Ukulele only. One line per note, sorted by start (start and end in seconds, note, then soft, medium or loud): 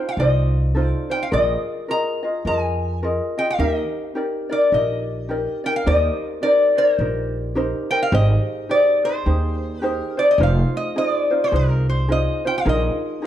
0.00 0.18 D#4 soft
0.00 0.19 F4 soft
0.00 0.19 C5 soft
0.19 0.75 D#4 medium
0.19 0.76 F4 medium
0.19 0.73 A4 medium
0.19 0.75 C5 medium
0.75 1.10 D#4 medium
0.75 1.10 F4 medium
0.75 1.10 A4 medium
0.75 1.09 C5 medium
1.10 1.31 D#4 soft
1.10 1.30 F4 soft
1.10 1.32 C5 soft
1.31 1.88 F4 medium
1.31 1.89 G#4 medium
1.31 1.88 A#4 medium
1.31 1.90 D#5 medium
1.88 2.23 F4 medium
1.88 2.23 G#4 medium
1.88 2.23 A#4 soft
1.88 2.22 D#5 medium
2.23 2.45 F4 soft
2.23 2.46 G#4 soft
2.23 2.45 D#5 medium
2.46 3.02 F4 medium
2.46 3.03 G#4 medium
2.46 3.02 A#4 soft
2.46 3.04 D#5 medium
3.03 3.37 F4 medium
3.03 3.38 G#4 medium
3.03 3.37 A#4 medium
3.03 3.36 D#5 medium
3.38 3.59 F4 soft
3.38 3.59 G#4 soft
3.38 3.59 D#5 soft
3.59 4.15 D#4 medium
3.59 4.15 G4 medium
3.59 4.15 A#4 medium
4.15 4.50 D#4 medium
4.15 4.50 G4 medium
4.15 4.50 A#4 medium
4.15 4.48 D5 medium
4.49 4.71 D#4 soft
4.49 4.72 A#4 soft
4.49 4.72 D5 soft
4.72 5.29 D#4 medium
4.72 5.29 G4 soft
4.72 5.28 A#4 medium
5.29 5.64 D#4 medium
5.29 5.63 G4 soft
5.29 5.64 A#4 medium
5.29 5.63 D5 medium
5.64 5.86 D#4 soft
5.64 5.85 A#4 soft
5.64 5.86 D5 soft
5.86 6.43 D#4 medium
5.86 6.41 G4 medium
5.86 6.43 A#4 medium
5.86 6.44 C5 medium
6.42 6.77 D#4 medium
6.42 6.77 G4 soft
6.42 6.77 A#4 medium
6.42 6.76 C5 medium
6.77 6.98 D#4 soft
6.77 6.99 A#4 soft
6.77 6.99 C5 medium
6.99 7.56 D#4 medium
6.99 7.55 G4 medium
6.99 7.55 A#4 medium
6.99 7.56 C5 medium
7.55 7.90 D#4 medium
7.55 7.90 G4 medium
7.55 7.90 A#4 medium
7.55 7.90 C5 medium
7.91 8.11 D#4 soft
7.91 8.12 A#4 soft
7.91 8.12 C5 soft
8.12 8.69 D#4 medium
8.12 8.68 G4 medium
8.12 8.70 G#4 medium
8.12 8.70 C5 medium
8.69 9.04 D#4 medium
8.69 9.04 G4 medium
8.69 9.03 G#4 medium
8.69 9.03 C5 medium
9.04 9.25 D#4 soft
9.04 9.26 G#4 soft
9.04 9.26 C5 medium
9.25 9.82 D#4 medium
9.25 9.80 G4 soft
9.25 9.82 G#4 medium
9.25 9.83 C5 medium
9.82 10.17 D#4 medium
9.82 10.17 G4 medium
9.82 10.16 G#4 medium
9.82 10.16 C5 medium
10.17 10.39 D#4 soft
10.17 10.38 G#4 soft
10.17 10.39 C5 soft
10.39 10.96 D#4 medium
10.39 10.97 F4 medium
10.39 10.95 G#4 medium
10.39 10.96 C5 medium
10.96 11.31 D#4 medium
10.96 11.30 F4 medium
10.96 11.30 G#4 medium
10.96 11.29 C5 medium
11.30 11.51 D#4 soft
11.30 11.52 F4 soft
11.30 11.52 C5 soft
11.52 12.08 D#4 medium
11.52 12.10 F4 medium
11.52 12.08 G#4 medium
11.52 12.09 C5 medium
12.08 12.43 D#4 medium
12.08 12.44 F4 medium
12.08 12.43 G#4 medium
12.08 12.43 C5 medium
12.45 12.65 D#4 soft
12.45 12.66 F4 soft
12.45 12.66 C5 soft
12.65 13.21 D#4 medium
12.65 13.22 F4 medium
12.65 13.21 G#4 medium
12.65 13.23 A#4 medium
13.22 13.26 D#4 medium
13.22 13.26 G#4 medium